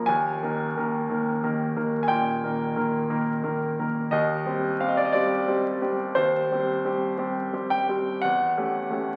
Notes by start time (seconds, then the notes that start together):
Already playing: D2 F3 A#3 A#4 A#5
0.06 D#2 G#5
0.43 D#3 A#3 A#4
0.77 D#3 A#3 A#4
1.09 D#3 A#3 A#4
1.44 D#3 A#3 A#4
1.76 D#3 A#3 A#4
2.03 G#5
2.08 A#2 G5
2.43 D#3 A#3 A#4
2.76 D#3 A#3 A#4
3.10 D#3 A#3 A#4
3.43 D#3 A#3 A#4
3.79 D#3 A#3 A#4
4.11 D#2 D#5
4.46 G3 C4 G4
4.80 G3 C4 G4 F5
4.88 D#5
4.97 D5
5.05 D#5
5.13 G3 C4 G4 D5
5.48 G3 C4 G4
5.81 G3 C4 G4
6.15 D#2 C5
6.51 G3 C4 G4
6.85 G3 C4 G4
7.18 G3 C4 G4
7.53 G3 C4 G4
7.70 G5
7.89 G3 C4 G4
8.22 E2 F#5
8.57 A3 C#4 G4
8.90 A3 C#4 G4